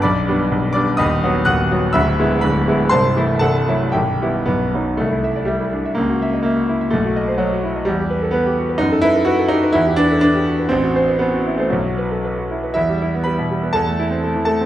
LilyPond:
\new Staff \with { instrumentName = "Grand piano" } { \time 2/4 \key g \major \tempo 4 = 124 << { <d'' b'' d'''>4. <d'' d'''>8 | \key e \minor <dis'' b'' dis'''>4 <fis'' dis''' fis'''>4 | <e'' b'' e'''>4 <b' b''>8 r8 | <c'' a'' c'''>4 <a' fis'' a''>4 |
<g' e'' g''>4 b4 | a4 g4 | ais4 ais4 | a4 fis4 |
g4 b8 r8 | dis'8 e'8 fis'8 dis'8 | e'8 d'8 d'4 | c'4 b8. a16 |
fis4. r8 | <e' e''>4 <b' b''>4 | <a' a''>4. <a' a''>8 | } \\ { <b,,, b,,>8 <g b d'>8 <b,,, b,,>8 <g b d'>8 | <dis,, dis,>8 <fis b fis'>8 <dis,, dis,>8 <fis b fis'>8 | <d,, d,>8 <gis b e'>8 <d,, d,>8 <gis b e'>8 | <c,, c,>8 <e a e'>8 <c,, c,>8 <fis a e'>8 |
<b,,, b,,>8 <g b e'>8 <b,,, b,,>8 <fis b dis'>8 | c,16 e'16 e''16 d''16 e''16 e'16 d'16 e''16 | cis,16 fis'16 e''16 dis''16 e''16 fis'16 e'16 e''16 | b,,16 fis'16 dis''16 c''16 dis''16 fis'16 e'16 dis''16 |
e,16 g'16 b'16 a'16 b'16 g'16 fis'16 b'16 | fis,16 a'16 b'16 a'16 b'16 a'16 g'16 b'16 | e,16 g'16 b'16 a'16 b'16 g'16 fis'16 b'16 | a,,16 fis'16 c''16 b'16 c''16 fis'16 e'16 c''16 |
b,,16 fis'16 b'16 a'16 b'16 fis'16 e'16 b'16 | e,16 g16 e'16 b16 g16 b,16 g16 b16 | e,16 a16 e'16 c'16 a16 e16 a16 c'16 | } >> }